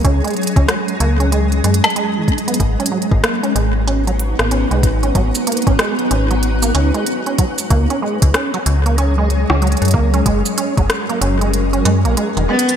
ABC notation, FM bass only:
X:1
M:4/4
L:1/16
Q:"Swing 16ths" 1/4=94
K:G#m
V:1 name="FM bass" clef=bass
C,, z2 C,, z2 C,,4 F,, z4 z | G,,, z2 G,,, z2 G,,,4- G,,, G,,,2 B,,, G,,,2 | G,,, z2 G,,, z2 G,,,4 C,, z4 z | C,, z2 C,, z2 C,,4- C,, C,,2 F,, C,,2 |
F,,, z2 F,,, z2 F,,,4 F,, A,,, z E,,, z2 |]